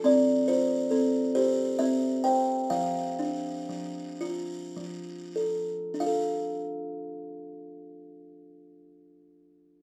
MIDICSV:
0, 0, Header, 1, 2, 480
1, 0, Start_track
1, 0, Key_signature, -1, "major"
1, 0, Tempo, 875912
1, 18, Time_signature, 6, 3, 24, 8
1, 978, Tempo, 916031
1, 1458, Tempo, 980392
1, 1938, Tempo, 1086957
1, 2418, Tempo, 1234568
1, 2898, Tempo, 1295896
1, 4312, End_track
2, 0, Start_track
2, 0, Title_t, "Kalimba"
2, 0, Program_c, 0, 108
2, 23, Note_on_c, 0, 60, 75
2, 30, Note_on_c, 0, 74, 69
2, 245, Note_off_c, 0, 74, 0
2, 262, Note_on_c, 0, 65, 54
2, 262, Note_on_c, 0, 72, 74
2, 495, Note_off_c, 0, 60, 0
2, 496, Note_on_c, 0, 69, 60
2, 501, Note_on_c, 0, 60, 57
2, 505, Note_off_c, 0, 72, 0
2, 738, Note_off_c, 0, 60, 0
2, 738, Note_off_c, 0, 65, 0
2, 740, Note_on_c, 0, 72, 79
2, 741, Note_on_c, 0, 67, 74
2, 743, Note_off_c, 0, 69, 0
2, 979, Note_on_c, 0, 76, 78
2, 984, Note_on_c, 0, 60, 61
2, 988, Note_off_c, 0, 72, 0
2, 1200, Note_off_c, 0, 76, 0
2, 1216, Note_on_c, 0, 79, 72
2, 1221, Note_on_c, 0, 72, 64
2, 1325, Note_off_c, 0, 79, 0
2, 1458, Note_on_c, 0, 77, 79
2, 1461, Note_off_c, 0, 60, 0
2, 1461, Note_off_c, 0, 67, 0
2, 1461, Note_off_c, 0, 72, 0
2, 1461, Note_on_c, 0, 53, 70
2, 1698, Note_on_c, 0, 62, 64
2, 1937, Note_off_c, 0, 53, 0
2, 1942, Note_on_c, 0, 53, 56
2, 2170, Note_on_c, 0, 65, 71
2, 2401, Note_off_c, 0, 77, 0
2, 2412, Note_off_c, 0, 53, 0
2, 2417, Note_on_c, 0, 53, 59
2, 2647, Note_on_c, 0, 69, 60
2, 2652, Note_off_c, 0, 62, 0
2, 2874, Note_on_c, 0, 62, 57
2, 2893, Note_off_c, 0, 65, 0
2, 2897, Note_off_c, 0, 69, 0
2, 2898, Note_off_c, 0, 53, 0
2, 2898, Note_on_c, 0, 65, 50
2, 2898, Note_on_c, 0, 77, 64
2, 2920, Note_on_c, 0, 69, 57
2, 4312, Note_off_c, 0, 62, 0
2, 4312, Note_off_c, 0, 65, 0
2, 4312, Note_off_c, 0, 69, 0
2, 4312, Note_off_c, 0, 77, 0
2, 4312, End_track
0, 0, End_of_file